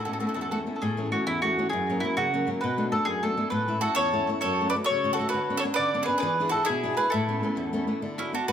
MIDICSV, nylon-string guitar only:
0, 0, Header, 1, 2, 480
1, 0, Start_track
1, 0, Key_signature, 3, "major"
1, 0, Tempo, 300752
1, 1325, Time_signature, 6, 3, 24, 8
1, 13603, End_track
2, 0, Start_track
2, 0, Title_t, "Nylon-string guitar"
2, 0, Program_c, 0, 24
2, 0, Note_on_c, 0, 45, 66
2, 91, Note_on_c, 0, 57, 44
2, 103, Note_on_c, 0, 61, 47
2, 104, Note_on_c, 0, 59, 37
2, 322, Note_off_c, 0, 57, 0
2, 329, Note_off_c, 0, 61, 0
2, 332, Note_off_c, 0, 45, 0
2, 332, Note_off_c, 0, 59, 0
2, 341, Note_on_c, 0, 57, 43
2, 347, Note_on_c, 0, 61, 47
2, 352, Note_on_c, 0, 59, 40
2, 580, Note_on_c, 0, 40, 61
2, 743, Note_off_c, 0, 57, 0
2, 747, Note_off_c, 0, 61, 0
2, 749, Note_off_c, 0, 59, 0
2, 828, Note_on_c, 0, 57, 50
2, 837, Note_on_c, 0, 59, 41
2, 846, Note_on_c, 0, 61, 52
2, 1043, Note_off_c, 0, 57, 0
2, 1043, Note_off_c, 0, 59, 0
2, 1055, Note_off_c, 0, 61, 0
2, 1061, Note_on_c, 0, 57, 38
2, 1066, Note_on_c, 0, 59, 42
2, 1067, Note_off_c, 0, 40, 0
2, 1074, Note_on_c, 0, 61, 47
2, 1262, Note_off_c, 0, 57, 0
2, 1262, Note_off_c, 0, 59, 0
2, 1269, Note_off_c, 0, 61, 0
2, 1317, Note_on_c, 0, 45, 78
2, 1550, Note_on_c, 0, 52, 48
2, 1567, Note_on_c, 0, 57, 44
2, 1574, Note_on_c, 0, 61, 49
2, 1767, Note_off_c, 0, 52, 0
2, 1769, Note_off_c, 0, 57, 0
2, 1784, Note_on_c, 0, 52, 51
2, 1786, Note_off_c, 0, 61, 0
2, 1792, Note_on_c, 0, 57, 46
2, 1801, Note_off_c, 0, 45, 0
2, 1805, Note_on_c, 0, 61, 51
2, 2026, Note_on_c, 0, 40, 75
2, 2190, Note_off_c, 0, 52, 0
2, 2191, Note_off_c, 0, 57, 0
2, 2202, Note_off_c, 0, 61, 0
2, 2279, Note_on_c, 0, 52, 51
2, 2287, Note_on_c, 0, 57, 58
2, 2295, Note_on_c, 0, 61, 64
2, 2511, Note_off_c, 0, 40, 0
2, 2513, Note_off_c, 0, 57, 0
2, 2516, Note_off_c, 0, 52, 0
2, 2521, Note_off_c, 0, 61, 0
2, 2532, Note_on_c, 0, 52, 45
2, 2537, Note_on_c, 0, 57, 49
2, 2541, Note_on_c, 0, 61, 57
2, 2720, Note_off_c, 0, 57, 0
2, 2722, Note_off_c, 0, 52, 0
2, 2726, Note_off_c, 0, 61, 0
2, 2763, Note_on_c, 0, 42, 79
2, 3025, Note_on_c, 0, 54, 54
2, 3035, Note_on_c, 0, 58, 49
2, 3040, Note_on_c, 0, 61, 50
2, 3227, Note_off_c, 0, 54, 0
2, 3236, Note_off_c, 0, 42, 0
2, 3241, Note_off_c, 0, 58, 0
2, 3246, Note_on_c, 0, 54, 51
2, 3251, Note_off_c, 0, 61, 0
2, 3261, Note_on_c, 0, 58, 51
2, 3270, Note_on_c, 0, 61, 61
2, 3469, Note_on_c, 0, 49, 70
2, 3634, Note_off_c, 0, 54, 0
2, 3642, Note_off_c, 0, 58, 0
2, 3648, Note_off_c, 0, 61, 0
2, 3729, Note_on_c, 0, 54, 55
2, 3737, Note_on_c, 0, 58, 54
2, 3746, Note_on_c, 0, 61, 65
2, 3921, Note_off_c, 0, 54, 0
2, 3927, Note_off_c, 0, 61, 0
2, 3932, Note_off_c, 0, 58, 0
2, 3938, Note_on_c, 0, 54, 48
2, 3943, Note_off_c, 0, 49, 0
2, 3951, Note_on_c, 0, 58, 45
2, 3951, Note_on_c, 0, 61, 66
2, 4135, Note_off_c, 0, 54, 0
2, 4138, Note_off_c, 0, 61, 0
2, 4141, Note_off_c, 0, 58, 0
2, 4208, Note_on_c, 0, 47, 84
2, 4431, Note_on_c, 0, 57, 47
2, 4438, Note_on_c, 0, 59, 42
2, 4439, Note_on_c, 0, 62, 58
2, 4641, Note_off_c, 0, 57, 0
2, 4658, Note_off_c, 0, 59, 0
2, 4660, Note_on_c, 0, 57, 59
2, 4661, Note_off_c, 0, 62, 0
2, 4672, Note_off_c, 0, 47, 0
2, 4679, Note_on_c, 0, 62, 65
2, 4682, Note_on_c, 0, 59, 48
2, 4890, Note_on_c, 0, 42, 65
2, 5055, Note_off_c, 0, 57, 0
2, 5065, Note_off_c, 0, 59, 0
2, 5066, Note_off_c, 0, 62, 0
2, 5158, Note_on_c, 0, 57, 59
2, 5165, Note_on_c, 0, 59, 55
2, 5171, Note_on_c, 0, 62, 60
2, 5360, Note_off_c, 0, 59, 0
2, 5366, Note_off_c, 0, 57, 0
2, 5369, Note_off_c, 0, 42, 0
2, 5375, Note_off_c, 0, 62, 0
2, 5384, Note_on_c, 0, 57, 51
2, 5384, Note_on_c, 0, 59, 49
2, 5394, Note_on_c, 0, 62, 56
2, 5570, Note_off_c, 0, 59, 0
2, 5574, Note_off_c, 0, 57, 0
2, 5579, Note_off_c, 0, 62, 0
2, 5614, Note_on_c, 0, 45, 77
2, 5871, Note_on_c, 0, 61, 41
2, 5873, Note_on_c, 0, 57, 50
2, 5881, Note_on_c, 0, 64, 61
2, 6076, Note_off_c, 0, 57, 0
2, 6077, Note_off_c, 0, 61, 0
2, 6089, Note_off_c, 0, 64, 0
2, 6092, Note_off_c, 0, 45, 0
2, 6093, Note_on_c, 0, 57, 49
2, 6098, Note_on_c, 0, 61, 44
2, 6108, Note_on_c, 0, 64, 62
2, 6334, Note_on_c, 0, 40, 64
2, 6495, Note_off_c, 0, 57, 0
2, 6495, Note_off_c, 0, 61, 0
2, 6503, Note_off_c, 0, 64, 0
2, 6587, Note_on_c, 0, 57, 53
2, 6602, Note_on_c, 0, 64, 53
2, 6603, Note_on_c, 0, 61, 52
2, 6817, Note_off_c, 0, 57, 0
2, 6818, Note_off_c, 0, 40, 0
2, 6826, Note_off_c, 0, 61, 0
2, 6836, Note_off_c, 0, 64, 0
2, 6837, Note_on_c, 0, 57, 41
2, 6845, Note_on_c, 0, 61, 43
2, 6855, Note_on_c, 0, 64, 56
2, 7026, Note_off_c, 0, 57, 0
2, 7031, Note_off_c, 0, 61, 0
2, 7037, Note_off_c, 0, 64, 0
2, 7083, Note_on_c, 0, 42, 77
2, 7356, Note_on_c, 0, 57, 44
2, 7363, Note_on_c, 0, 61, 44
2, 7368, Note_on_c, 0, 66, 49
2, 7557, Note_off_c, 0, 42, 0
2, 7564, Note_off_c, 0, 57, 0
2, 7578, Note_off_c, 0, 61, 0
2, 7583, Note_off_c, 0, 66, 0
2, 7583, Note_on_c, 0, 57, 41
2, 7597, Note_on_c, 0, 61, 41
2, 7605, Note_on_c, 0, 66, 51
2, 7832, Note_on_c, 0, 49, 59
2, 7968, Note_off_c, 0, 57, 0
2, 7976, Note_off_c, 0, 61, 0
2, 7979, Note_off_c, 0, 66, 0
2, 8046, Note_on_c, 0, 57, 57
2, 8046, Note_on_c, 0, 61, 48
2, 8063, Note_on_c, 0, 66, 59
2, 8272, Note_off_c, 0, 57, 0
2, 8289, Note_off_c, 0, 61, 0
2, 8290, Note_off_c, 0, 49, 0
2, 8291, Note_on_c, 0, 57, 55
2, 8292, Note_off_c, 0, 66, 0
2, 8306, Note_on_c, 0, 61, 44
2, 8317, Note_on_c, 0, 66, 53
2, 8477, Note_off_c, 0, 57, 0
2, 8487, Note_off_c, 0, 61, 0
2, 8489, Note_off_c, 0, 66, 0
2, 8521, Note_on_c, 0, 50, 79
2, 8780, Note_on_c, 0, 59, 53
2, 8780, Note_on_c, 0, 61, 44
2, 8790, Note_on_c, 0, 62, 49
2, 8990, Note_off_c, 0, 59, 0
2, 8994, Note_off_c, 0, 50, 0
2, 8994, Note_off_c, 0, 61, 0
2, 8996, Note_off_c, 0, 62, 0
2, 9011, Note_on_c, 0, 61, 49
2, 9017, Note_on_c, 0, 59, 46
2, 9018, Note_on_c, 0, 62, 61
2, 9236, Note_on_c, 0, 50, 70
2, 9396, Note_off_c, 0, 59, 0
2, 9399, Note_off_c, 0, 61, 0
2, 9400, Note_off_c, 0, 62, 0
2, 9484, Note_on_c, 0, 59, 55
2, 9493, Note_on_c, 0, 61, 57
2, 9494, Note_on_c, 0, 62, 61
2, 9686, Note_off_c, 0, 61, 0
2, 9688, Note_off_c, 0, 59, 0
2, 9704, Note_off_c, 0, 62, 0
2, 9704, Note_on_c, 0, 61, 39
2, 9706, Note_off_c, 0, 50, 0
2, 9710, Note_on_c, 0, 59, 54
2, 9723, Note_on_c, 0, 62, 56
2, 9896, Note_off_c, 0, 61, 0
2, 9897, Note_off_c, 0, 59, 0
2, 9906, Note_off_c, 0, 62, 0
2, 9937, Note_on_c, 0, 52, 89
2, 10212, Note_on_c, 0, 62, 53
2, 10220, Note_on_c, 0, 64, 45
2, 10231, Note_on_c, 0, 68, 59
2, 10410, Note_off_c, 0, 52, 0
2, 10410, Note_off_c, 0, 62, 0
2, 10412, Note_off_c, 0, 64, 0
2, 10418, Note_off_c, 0, 68, 0
2, 10427, Note_on_c, 0, 62, 52
2, 10436, Note_on_c, 0, 64, 43
2, 10438, Note_on_c, 0, 68, 53
2, 10681, Note_on_c, 0, 47, 60
2, 10815, Note_off_c, 0, 62, 0
2, 10816, Note_off_c, 0, 64, 0
2, 10820, Note_off_c, 0, 68, 0
2, 10908, Note_on_c, 0, 62, 63
2, 10917, Note_on_c, 0, 64, 56
2, 10935, Note_on_c, 0, 68, 62
2, 11113, Note_off_c, 0, 62, 0
2, 11127, Note_off_c, 0, 68, 0
2, 11132, Note_off_c, 0, 64, 0
2, 11132, Note_on_c, 0, 62, 49
2, 11139, Note_off_c, 0, 47, 0
2, 11145, Note_on_c, 0, 68, 64
2, 11153, Note_on_c, 0, 64, 44
2, 11320, Note_off_c, 0, 62, 0
2, 11329, Note_off_c, 0, 68, 0
2, 11331, Note_off_c, 0, 64, 0
2, 11391, Note_on_c, 0, 45, 82
2, 11627, Note_on_c, 0, 57, 49
2, 11637, Note_on_c, 0, 59, 46
2, 11640, Note_on_c, 0, 61, 47
2, 11847, Note_off_c, 0, 57, 0
2, 11848, Note_off_c, 0, 59, 0
2, 11852, Note_off_c, 0, 45, 0
2, 11862, Note_off_c, 0, 61, 0
2, 11866, Note_on_c, 0, 57, 45
2, 11870, Note_on_c, 0, 59, 45
2, 11881, Note_on_c, 0, 61, 51
2, 12081, Note_on_c, 0, 40, 69
2, 12254, Note_off_c, 0, 57, 0
2, 12254, Note_off_c, 0, 59, 0
2, 12263, Note_off_c, 0, 61, 0
2, 12335, Note_on_c, 0, 57, 57
2, 12344, Note_on_c, 0, 59, 51
2, 12355, Note_on_c, 0, 61, 64
2, 12546, Note_off_c, 0, 57, 0
2, 12556, Note_off_c, 0, 61, 0
2, 12560, Note_off_c, 0, 59, 0
2, 12561, Note_off_c, 0, 40, 0
2, 12565, Note_on_c, 0, 57, 47
2, 12574, Note_on_c, 0, 61, 46
2, 12584, Note_on_c, 0, 59, 43
2, 12759, Note_off_c, 0, 57, 0
2, 12764, Note_off_c, 0, 61, 0
2, 12767, Note_off_c, 0, 59, 0
2, 12804, Note_on_c, 0, 50, 79
2, 13059, Note_on_c, 0, 59, 39
2, 13067, Note_on_c, 0, 62, 46
2, 13077, Note_on_c, 0, 66, 42
2, 13274, Note_off_c, 0, 59, 0
2, 13283, Note_off_c, 0, 62, 0
2, 13285, Note_off_c, 0, 50, 0
2, 13293, Note_on_c, 0, 59, 45
2, 13295, Note_off_c, 0, 66, 0
2, 13302, Note_on_c, 0, 62, 37
2, 13314, Note_on_c, 0, 66, 52
2, 13542, Note_on_c, 0, 45, 68
2, 13603, Note_off_c, 0, 45, 0
2, 13603, Note_off_c, 0, 59, 0
2, 13603, Note_off_c, 0, 62, 0
2, 13603, Note_off_c, 0, 66, 0
2, 13603, End_track
0, 0, End_of_file